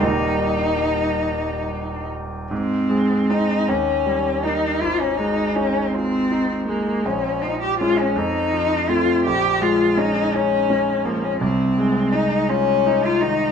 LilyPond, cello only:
\new Staff \with { instrumentName = "Cello" } { \time 6/8 \key aes \major \tempo 4. = 54 ees'2~ ees'8 r8 | c'4 ees'8 des'4 ees'8 | f'16 des'16 ees'8 des'8 c'4 bes8 | des'8 ees'16 g'16 f'16 des'16 ees'4 f'8 |
g'8 f'8 ees'8 des'4 bes16 des'16 | c'4 ees'8 des'8. f'16 ees'8 | }